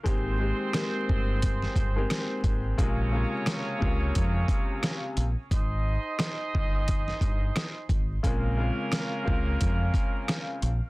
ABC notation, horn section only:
X:1
M:4/4
L:1/8
Q:"Swing 16ths" 1/4=88
K:Bbdor
V:1 name="Horn section"
[CAc]6- [CAc] z | [DABd]6- [DABd] z | [EAce]6- [EAce] z | [B,DFB]6- [B,DFB] z |]